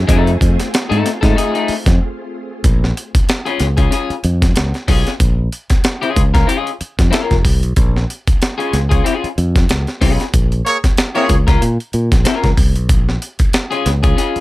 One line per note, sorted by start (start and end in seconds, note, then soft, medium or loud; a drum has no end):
0.00 2.60 A3 medium
0.00 2.61 C4 medium
0.00 2.60 G#4 loud
0.07 0.35 F2 loud
0.07 0.29 A3 loud
0.07 0.30 D#4 medium
0.07 2.63 F4 medium
0.07 0.30 A4 loud
0.07 kick loud
0.07 closed hi-hat medium
0.27 closed hi-hat soft
0.41 0.56 F2 loud
0.41 kick medium
0.41 closed hi-hat medium
0.60 snare soft
0.60 closed hi-hat medium
0.74 snare loud
0.74 closed hi-hat medium
0.90 1.03 G#2 medium
0.90 1.09 A3 medium
0.90 1.09 D#4 medium
0.90 1.09 A4 medium
0.90 closed hi-hat soft
1.06 snare soft
1.06 closed hi-hat medium
1.21 1.35 G#2 medium
1.21 1.34 A3 medium
1.21 1.35 D#4 medium
1.21 1.35 A4 medium
1.21 kick loud
1.21 snare soft
1.21 closed hi-hat medium
1.35 1.53 A3 medium
1.35 1.54 D#4 medium
1.35 1.53 G#4 medium
1.35 closed hi-hat medium
1.54 1.74 A3 medium
1.54 1.73 D#4 medium
1.54 1.73 G#4 medium
1.54 closed hi-hat soft
1.68 muted fingered electric bass stroke medium
1.68 open hi-hat medium
1.86 1.98 F2 medium
1.86 kick loud
1.86 snare soft
1.86 closed hi-hat medium
2.64 2.91 A#1 loud
2.64 kick loud
2.64 closed hi-hat medium
2.84 snare soft
2.97 closed hi-hat medium
3.15 muted fingered electric bass stroke medium
3.15 kick loud
3.15 closed hi-hat medium
3.29 snare loud
3.29 closed hi-hat medium
3.46 3.65 C#4 medium
3.46 3.65 F4 medium
3.46 3.65 G#4 medium
3.46 closed hi-hat soft
3.60 3.87 C#2 medium
3.60 snare soft
3.60 closed hi-hat medium
3.77 3.89 C#4 medium
3.77 3.91 F4 medium
3.77 3.91 G#4 medium
3.77 kick medium
3.77 closed hi-hat soft
3.91 4.13 C#4 medium
3.91 4.14 F4 medium
3.91 4.14 G#4 loud
3.91 closed hi-hat medium
4.10 muted fingered electric bass stroke soft
4.10 closed hi-hat soft
4.24 4.52 F2 loud
4.24 closed hi-hat medium
4.42 kick medium
4.42 snare soft
4.42 closed hi-hat medium
4.56 4.72 C#2 medium
4.56 snare loud
4.56 closed hi-hat loud
4.74 snare soft
4.74 closed hi-hat soft
4.88 5.04 B1 medium
4.88 5.10 C#4 loud
4.88 5.10 F4 loud
4.88 5.11 G#4 loud
4.88 kick loud
4.88 open hi-hat medium
5.07 snare soft
5.07 closed hi-hat medium
5.20 5.48 A#1 loud
5.20 kick loud
5.20 closed hi-hat medium
5.52 closed hi-hat medium
5.70 muted fingered electric bass stroke soft
5.70 kick loud
5.70 snare soft
5.70 closed hi-hat medium
5.84 snare medium
5.84 closed hi-hat medium
6.02 6.22 C#4 medium
6.02 6.21 F4 medium
6.02 6.21 G#4 medium
6.02 closed hi-hat soft
6.16 6.44 C#2 medium
6.16 kick loud
6.16 closed hi-hat medium
6.34 6.46 C#4 medium
6.34 6.46 F4 medium
6.34 6.48 A#4 medium
6.34 kick medium
6.34 snare soft
6.34 closed hi-hat soft
6.47 6.70 C#4 medium
6.47 6.70 F4 medium
6.47 6.70 G#4 loud
6.47 closed hi-hat medium
6.67 closed hi-hat soft
6.81 muted fingered electric bass stroke medium
6.81 closed hi-hat medium
6.99 7.11 F2 medium
6.99 kick medium
6.99 snare soft
6.99 closed hi-hat medium
7.11 7.33 C#4 medium
7.11 7.34 F4 medium
7.11 7.34 A#4 loud
7.11 snare loud
7.11 closed hi-hat medium
7.31 7.43 F1 loud
7.31 kick medium
7.31 snare soft
7.31 closed hi-hat soft
7.45 7.63 C2 medium
7.45 kick medium
7.45 open hi-hat medium
7.63 7.75 B1 medium
7.63 closed hi-hat medium
7.76 8.04 A#1 loud
7.76 kick loud
7.76 closed hi-hat medium
7.96 snare soft
8.10 closed hi-hat medium
8.27 muted fingered electric bass stroke soft
8.27 kick loud
8.27 closed hi-hat medium
8.42 snare medium
8.42 closed hi-hat medium
8.58 8.78 C#4 medium
8.58 8.78 F4 medium
8.58 8.77 G#4 medium
8.58 closed hi-hat soft
8.73 9.00 C#2 medium
8.73 snare soft
8.73 closed hi-hat medium
8.89 9.03 C#4 soft
8.89 9.04 F4 medium
8.89 9.04 G#4 medium
8.89 kick medium
8.89 closed hi-hat medium
9.04 9.26 C#4 medium
9.04 9.27 F4 medium
9.04 9.27 G#4 medium
9.04 closed hi-hat medium
9.24 muted fingered electric bass stroke soft
9.24 closed hi-hat soft
9.38 9.65 F2 medium
9.38 closed hi-hat medium
9.56 kick medium
9.56 snare soft
9.56 closed hi-hat medium
9.69 9.85 C#2 medium
9.69 snare loud
9.69 closed hi-hat medium
9.87 snare soft
9.87 closed hi-hat soft
10.01 10.17 B1 medium
10.01 10.23 C#4 medium
10.01 10.23 F4 medium
10.01 10.24 G#4 loud
10.01 kick medium
10.01 open hi-hat medium
10.20 snare soft
10.20 closed hi-hat medium
10.34 10.61 A#1 loud
10.34 kick loud
10.34 closed hi-hat medium
10.52 closed hi-hat soft
10.65 10.77 A#3 medium
10.65 10.77 G#4 medium
10.65 10.77 C#5 loud
10.65 closed hi-hat medium
10.84 muted fingered electric bass stroke soft
10.84 kick medium
10.84 snare soft
10.84 closed hi-hat medium
10.97 snare loud
10.97 closed hi-hat medium
11.15 11.36 A#3 loud
11.15 11.35 C#4 medium
11.15 11.34 F4 medium
11.15 11.35 G#4 loud
11.15 11.34 G#4 medium
11.15 11.36 C#5 loud
11.15 closed hi-hat soft
11.29 11.57 C#2 loud
11.29 kick medium
11.29 closed hi-hat medium
11.47 11.62 C#4 medium
11.47 11.61 F4 medium
11.47 11.61 A#4 medium
11.47 kick loud
11.47 snare soft
11.47 closed hi-hat soft
11.62 11.77 A#2 loud
11.62 closed hi-hat medium
11.80 closed hi-hat soft
11.93 12.09 A#2 loud
11.93 closed hi-hat medium
12.12 12.24 A#1 medium
12.12 kick medium
12.12 snare soft
12.12 closed hi-hat medium
12.25 12.47 C#4 medium
12.25 12.47 F4 medium
12.25 12.48 A#4 medium
12.25 snare medium
12.25 closed hi-hat loud
12.43 12.56 C#2 loud
12.43 kick medium
12.43 snare soft
12.43 closed hi-hat soft
12.57 12.76 C2 medium
12.57 kick loud
12.57 open hi-hat medium
12.76 12.90 B1 medium
12.76 closed hi-hat medium
12.89 13.17 A#1 loud
12.89 kick loud
12.89 closed hi-hat medium
13.09 snare soft
13.22 closed hi-hat medium
13.39 muted fingered electric bass stroke medium
13.39 kick medium
13.39 closed hi-hat medium
13.53 snare medium
13.53 closed hi-hat medium
13.71 13.91 C#4 medium
13.71 13.90 F4 medium
13.71 13.90 G#4 medium
13.71 closed hi-hat soft
13.86 14.13 C#2 medium
13.86 snare soft
13.86 closed hi-hat medium
14.03 14.16 C#4 soft
14.03 14.16 F4 medium
14.03 14.17 G#4 medium
14.03 kick medium
14.03 closed hi-hat medium
14.17 14.39 C#4 medium
14.17 14.39 F4 medium
14.17 14.40 G#4 loud
14.17 closed hi-hat medium
14.36 muted fingered electric bass stroke soft
14.36 closed hi-hat soft